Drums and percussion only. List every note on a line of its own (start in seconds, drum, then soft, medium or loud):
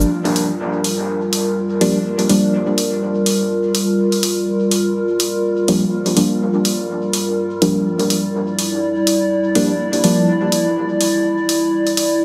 0.01 shaker soft
0.25 open hi-hat soft
0.36 open hi-hat medium
0.84 open hi-hat medium
1.33 open hi-hat medium
1.81 open hi-hat medium
2.19 open hi-hat soft
2.29 open hi-hat medium
2.78 open hi-hat medium
3.26 open hi-hat medium
3.75 open hi-hat medium
4.12 open hi-hat soft
4.23 open hi-hat medium
4.71 open hi-hat medium
5.20 open hi-hat medium
5.68 open hi-hat medium
6.06 open hi-hat soft
6.17 open hi-hat medium
6.65 open hi-hat medium
7.13 open hi-hat medium
7.62 open hi-hat medium
7.99 open hi-hat soft
8.10 open hi-hat medium
8.59 open hi-hat medium
9.07 open hi-hat medium
9.55 open hi-hat medium
9.93 open hi-hat soft
10.04 open hi-hat medium
10.52 open hi-hat medium
11.01 open hi-hat medium
11.49 open hi-hat medium
11.87 open hi-hat soft
11.97 open hi-hat medium